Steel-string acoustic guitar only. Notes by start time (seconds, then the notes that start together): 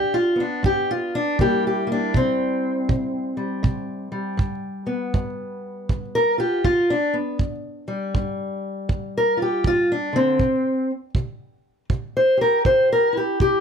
Already playing: G2 G4
0.14 F4
0.36 B3
0.40 D4
0.63 G2 G4
0.91 F4
1.15 D4
1.39 C3 G3 A#3 E4 G4
1.67 G4
1.87 A#3
1.92 D4
2.14 C3 C4
2.89 C3
3.37 G3
3.63 C3
4.12 G3
4.37 G2
4.87 B3
5.14 G2
5.90 G2
6.15 A#4
6.38 F4 G4
6.65 G2 F4
6.90 D4
7.14 B3
7.40 G2
7.88 G3
8.14 G2
8.89 G2
9.17 A#4
9.37 F4
9.42 G4
9.64 G2 F4
9.92 D4
10.13 D3 C4
10.41 C3
11.16 C3
11.90 C3
12.17 C5
12.37 G4 A#4
12.66 C3 C5
12.92 A#4
13.13 E4
13.17 G4
13.41 C3 G4